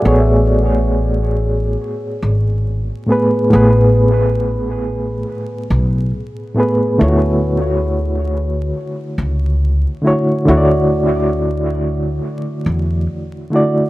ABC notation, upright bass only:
X:1
M:4/4
L:1/16
Q:"Swing 16ths" 1/4=69
K:Dlyd
V:1 name="Upright bass" clef=bass
A,,,8 z2 G,,,3 z3 | A,,,8 z2 B,,,2 z4 | D,,8 z2 C,,3 z3 | D,,8 z2 E,,2 z4 |]